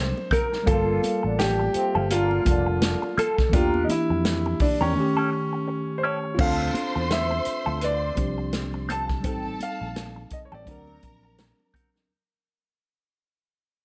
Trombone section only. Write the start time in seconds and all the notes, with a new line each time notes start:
0.67 A#3 D4 F4
1.24 D3 A#3 D4
1.39 D3 A#3 D4
1.74 F3 A3 C4
2.10 D3 A#3 D4
2.46 D3 A#3 D4